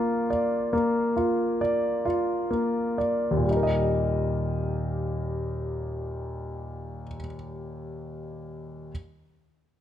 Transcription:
Already playing: A#3 F4 D5
0.30 D5
0.73 A#3
1.16 F4
1.61 D5
2.05 F4
2.51 A#3
2.98 D5
3.31 D#2
3.37 A#2
3.44 G3
3.51 D#4
3.57 A#4
3.63 D#5

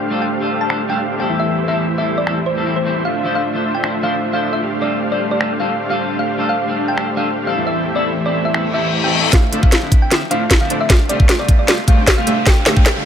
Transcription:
Already playing: A3 D4 G4 C5 F5
0.10 G3 D4 F4 A4
0.22 G5
0.40 G3 D4 F4 A4
0.61 A5
0.69 G3 D4 F4 A4, finger snap
0.89 G3 D4 F4 A4 G5
1.18 E2 G3 C4 E4 G5
1.22 A4
1.29 E3 A3 E4 G4 C5 E5
1.40 E5
1.67 E2 G3 C4 E4 A4 E5
1.97 E2 G3 C4 E4 A4 E5
2.18 D5
2.26 E2 G3 C4 E4 A4, finger snap
2.46 C5
2.56 E2 G3 C4 E4 A4
2.65 E2 G3 C4 E4 A4
2.76 C5
2.85 E2 G3 C4 E4 C5
3.05 A3 D4 F4 C5 E5 F5
3.24 F3 D4 E4 C5
3.35 F5
3.54 F3 D4 E4 C5
3.75 G5
3.83 F3 D4 E4 C5, finger snap
4.02 F3 D4 E4 C5 F5
4.32 F3 D4 E4 C5 F5
4.53 E5
4.62 A3 D4 G4 C5 F5
4.81 G3 C4 F4 A4 D5
5.11 G3 C4 F4 A4 D5
5.31 D5
5.40 G3 C4 F4 A4, finger snap
5.59 G3 C4 F4 A4 F5
5.89 G3 C4 F4 A4 F5
6.19 A3 D4 G4 C5 F5
6.38 G3 D4 F4 A4
6.49 F5
6.68 G3 D4 F4 A4
6.88 G5
6.96 G3 D4 F4 A4, finger snap
7.16 G3 D4 F4 A4 F5
7.45 E2 G3 C4 E4 A4 F5
7.56 E3 A3 E4 G4 C5 E5
7.67 E5
7.95 E2 G3 C4 E4 A4 D5
8.25 E2 G3 C4 E4 A4 D5
8.45 E5
8.53 E2 G3 C4 E4 A4, finger snap, reverse cymbal
8.73 E2 G3 C4 E4 A4 E5
9.03 E2 G3 C4 E4 A4 G5
9.33 A3 D4 F4 C5 E5 F5, kick, snare, closed hi-hat, riser
9.51 D3 F3 A3 C4 D4 E4 F4 C5 E5, closed hi-hat
9.63 D4 F4 C5 F5, kick
9.72 snare, closed hi-hat
9.82 D3 F3 C4 E4
9.92 kick, closed hi-hat
10.02 G5
10.10 D3 F3 C4 E4, snare, closed hi-hat
10.30 D3 F3 A3 C4 D4 E4 F4 C5 F5, closed hi-hat
10.51 kick, snare, closed hi-hat
10.60 D3 F3 C4 E4 F5
10.70 A3 D4 F4 C5 D5, closed hi-hat
10.81 E5
10.90 A3 D4 G4 C5 F5, kick, snare, closed hi-hat
11.08 C3 G3 A3 D4 F4 G4 C5 D5 F5, closed hi-hat
11.20 A3 F5, kick
11.29 snare, closed hi-hat
11.39 C3 G3 A3 F4 D5
11.48 kick, closed hi-hat
11.59 D5
11.67 C3 G3 A3 F4, snare, closed hi-hat
11.87 C3 G3 A3 D4 F4 G4 C5 F5 G5, kick, closed hi-hat
12.07 kick, snare, closed hi-hat
12.17 C3 G3 A3 F4 F5
12.27 A3 D4 G4 C5 E5, closed hi-hat
12.46 A3 D4 G4 C5 F5 G5, kick, snare, closed hi-hat
12.65 D3 G3 A3 D4 F4 G4 C5 F5, snare, closed hi-hat
12.76 A3 D4 G4 C5 F5 G5, kick
12.86 snare, closed hi-hat
12.95 D3 G3 A3 F4

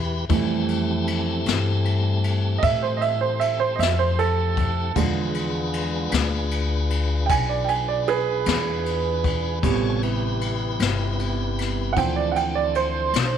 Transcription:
Already playing: E2 E4 G4 B4
0.29 F2 E3 G3 A3 C4 E4 G4 A4, kick, ride
0.69 ride
1.07 ride
1.46 G2, snare, ride
1.85 ride
2.24 ride
2.58 D#5
2.63 A2 E5, kick, ride
2.83 C5
2.97 D#5
3.01 E5, ride
3.21 C5
3.40 E5, ride
3.60 C5
3.76 F2 D#5
3.80 E5, snare, ride
3.99 C5
4.19 A4, ride
4.57 kick, ride
4.96 E2 D3 F3 G#3 D4 F4 G#4 B4, kick, ride
5.34 ride
5.73 ride
6.12 D2, snare, ride
6.51 ride
6.90 ride
7.26 B1 G5, kick, ride
7.30 G#5
7.49 D5
7.64 G5
7.69 G#5, ride
7.88 D5
8.07 G#4 B4, ride
8.46 E2, snare, ride
8.86 ride
9.24 kick, ride
9.63 A1 C3 G3 B3 F4 A4 C#5 G#5, kick, ride
10.02 E4 G4 B4, ride
10.41 ride
10.80 G1, snare, ride
11.19 ride
11.58 snare, ride
11.93 E3 F#5, kick
11.97 D2 F3 C4 D4 E4 A4 G5, ride
12.16 D5
12.32 F#5
12.36 G5, ride
12.55 D5
12.75 C5, ride
13.13 B1, snare, ride

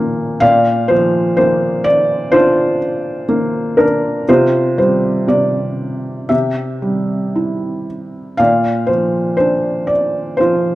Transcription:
Already playing: A#2 F3 A#3 F4 D5
0.40 A#2 D5 F5
0.88 F3 C5
1.37 A#3 C5
1.84 D5
2.32 D4 F4 C5
3.29 A#3
3.77 D4 A#4
4.29 C3 F4 C5
4.78 G3 C5
5.28 C3 D5
6.29 C3 G4 E5
6.82 G3
7.36 E4
8.37 A#2 D5 F5
8.87 F3 C5
9.37 D4 C5
9.87 D5
10.37 F3 F4 C5

